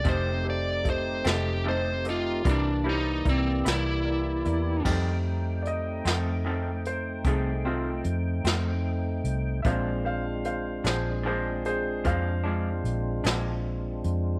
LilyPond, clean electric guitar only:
\new Staff \with { instrumentName = "Clean electric guitar" } { \clef bass \time 12/8 \key f \mixolydian \tempo 4. = 50 <f, ees a c'>8 r4 <ees a c'>8 <f, ees a c'>8 r8 <c g bes e'>8 <g bes e'>8 r8 <g bes e'>8 r4 | <f, ees a c'>8 r4 <ees a c'>8 <f, ees a c'>8 r8 <f, ees a c'>8 <ees a c'>8 r8 <ees a c'>8 r4 | <bes, f aes d'>8 r4 <f aes d'>8 <bes, f aes d'>8 r8 <bes, f aes d'>8 <f aes d'>8 r8 <f aes d'>8 r4 | }